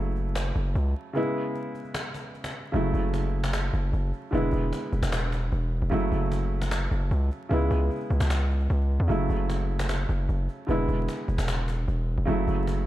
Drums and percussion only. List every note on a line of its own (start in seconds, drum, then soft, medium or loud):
0.16 cajon slap soft
0.35 cajon slap loud
0.55 cajon slap soft
0.75 cajon slap soft
1.15 cajon slap soft
1.55 cajon slap soft
1.75 cajon slap soft
1.85 cajon slap soft
1.94 cajon slap loud
2.14 cajon slap medium
2.34 cajon slap soft
2.44 cajon slap loud
2.74 cajon slap soft
2.94 cajon slap medium
3.14 cajon slap medium
3.44 cajon slap loud
3.53 cajon slap loud
3.73 cajon slap soft
3.93 cajon slap soft
4.13 cajon slap soft
4.33 cajon slap soft
4.53 cajon slap medium
4.73 cajon slap medium
4.93 cajon slap soft
5.03 cajon slap loud
5.12 cajon slap loud
5.32 cajon slap medium
5.52 cajon slap soft
5.92 cajon slap soft
6.12 cajon slap soft
6.32 cajon slap medium
6.62 cajon slap loud
6.71 cajon slap loud
6.91 cajon slap soft
7.11 cajon slap soft
7.31 cajon slap soft
7.51 cajon slap soft
7.71 cajon slap medium
7.91 cajon slap soft
7.96 cajon slap soft
8.01 cajon slap soft
8.05 cajon slap soft
8.10 cajon slap soft
8.20 cajon slap loud
8.30 cajon slap loud
8.50 cajon slap soft
8.60 cajon slap soft
8.70 cajon slap soft
9.10 cajon slap soft
9.30 cajon slap soft
9.50 cajon slap medium
9.79 cajon slap loud
9.89 cajon slap loud
10.09 cajon slap soft
10.29 cajon slap soft
10.49 cajon slap soft
10.69 cajon slap soft
10.89 cajon slap medium
11.08 cajon slap medium
11.28 cajon slap medium
11.38 cajon slap loud
11.48 cajon slap loud
11.68 cajon slap medium
11.88 cajon slap soft
12.28 cajon slap soft
12.47 cajon slap medium
12.67 cajon slap medium